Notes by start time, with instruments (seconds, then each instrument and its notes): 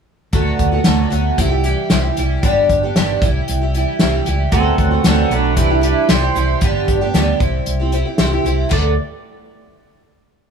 0.33 fingered electric bass D2, twelve-string acoustic guitar D3 F#3 A3 B3 F#4, kick, closed hi-hat
0.59 fingered electric bass D2, kick, closed hi-hat
0.72 twelve-string acoustic guitar A3 B3 F#4
0.84 fingered electric bass D2, twelve-string acoustic guitar D3 F#3 A3 B3 F#4, snare, closed hi-hat
1.10 fingered electric bass D2, twelve-string acoustic guitar F#3 A3 B3 F#4, closed hi-hat
1.38 fingered electric bass C2, twelve-string acoustic guitar C3 E3 G3 E4 G4, kick, closed hi-hat
1.49 twelve-string acoustic guitar G3 E4 G4
1.63 twelve-string acoustic guitar E3 G3 E4 G4, closed hi-hat
1.90 fingered electric bass C2, twelve-string acoustic guitar C3 E3 G3 E4 G4, snare, closed hi-hat
2.03 twelve-string acoustic guitar G3 E4 G4
2.17 fingered electric bass C2, twelve-string acoustic guitar E3 G3 E4 G4, closed hi-hat
2.43 fingered electric bass G1, twelve-string acoustic guitar G2 D3 G3 B3 D4 G4, kick, closed hi-hat
2.69 fingered electric bass G1, kick, closed hi-hat
2.83 twelve-string acoustic guitar G3 B3 D4 G4
2.96 fingered electric bass G1, twelve-string acoustic guitar G2 D3 G3 B3 D4 G4, snare, closed hi-hat
3.21 fingered electric bass C2, twelve-string acoustic guitar E3 G3 E4 G4, kick, closed hi-hat
3.48 fingered electric bass C2, closed hi-hat
3.61 twelve-string acoustic guitar G3 E4 G4
3.74 twelve-string acoustic guitar E3 G3 E4 G4, closed hi-hat
3.99 fingered electric bass C2, twelve-string acoustic guitar C3 E3 G3 E4 G4, snare, closed hi-hat
4.12 twelve-string acoustic guitar G3 E4 G4
4.25 fingered electric bass C#2, twelve-string acoustic guitar E3 G3 E4 G4, closed hi-hat
4.52 fingered electric bass D2, twelve-string acoustic guitar D3 F#3 A3 B3 F#4, pedal steel guitar C4 A4, kick, closed hi-hat
4.78 fingered electric bass D2, pedal steel guitar C4 A4, kick, closed hi-hat
4.91 twelve-string acoustic guitar A3 B3 F#4
5.04 fingered electric bass D2, twelve-string acoustic guitar D3 F#3 A3 B3 F#4, pedal steel guitar C4 A4, snare, closed hi-hat
5.30 fingered electric bass B1, twelve-string acoustic guitar F#3 A3 B3 F#4, pedal steel guitar D4 B4, closed hi-hat
5.56 fingered electric bass C2, twelve-string acoustic guitar C3 E3 G3 E4 G4, pedal steel guitar D4 B4, kick, closed hi-hat
5.70 twelve-string acoustic guitar G3 E4 G4
5.81 twelve-string acoustic guitar E3 G3 E4 G4, pedal steel guitar D4 B4, closed hi-hat
6.09 fingered electric bass C2, twelve-string acoustic guitar C3 E3 G3 E4 G4, pedal steel guitar C5, snare, closed hi-hat
6.22 twelve-string acoustic guitar G3 E4 G4
6.35 fingered electric bass C2, twelve-string acoustic guitar E3 G3 E4 G4, closed hi-hat
6.61 fingered electric bass G1, twelve-string acoustic guitar G2 D3 G3 B3 D4 G4, kick, closed hi-hat
6.88 fingered electric bass G1, kick, closed hi-hat
7.01 twelve-string acoustic guitar G3 B3 D4 G4
7.14 fingered electric bass D2, twelve-string acoustic guitar G2 D3 G3 B3 D4 G4, snare, closed hi-hat
7.40 fingered electric bass C2, twelve-string acoustic guitar G3 C4 E4 G4, kick, closed hi-hat
7.66 fingered electric bass C2, closed hi-hat
7.80 twelve-string acoustic guitar C4 E4 G4
7.92 twelve-string acoustic guitar G3 C4 E4 G4, closed hi-hat
8.05 twelve-string acoustic guitar C4 E4 G4
8.18 fingered electric bass C2, twelve-string acoustic guitar C3 G3 C4 E4 G4, snare, closed hi-hat
8.30 twelve-string acoustic guitar C4 E4 G4
8.45 fingered electric bass C2, twelve-string acoustic guitar G3 C4 E4 G4, closed hi-hat
8.69 fingered electric bass D2, twelve-string acoustic guitar D3 F#3 A3 B3 A4, pedal steel guitar D5, kick, crash